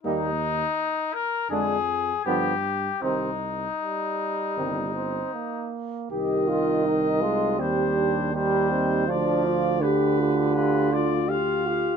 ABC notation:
X:1
M:4/4
L:1/8
Q:1/4=81
K:Cm
V:1 name="Trumpet"
E3 B A2 G2 | E6- E z | e4 c2 c2 | d2 =B2 B d f2 |]
V:2 name="Flugelhorn"
E z3 D z =B, z | C z G,3 C B,2 | G F E F G2 G E | F F G G F2 F G |]
V:3 name="French horn"
B, z3 A, z F, z | E, z3 E, z3 | G F E2 C D E C | D F G F G F G F |]
V:4 name="Trombone" clef=bass
G, z3 D, z D, z | C, z3 C, z3 | E,3 A, G,2 G,2 | F,2 D,4- D, z |]
V:5 name="Tuba" clef=bass
E,,2 z2 F,,2 G,,2 | C,,2 z2 G,,,2 z2 | C,,4 E,,4 | D,,8 |]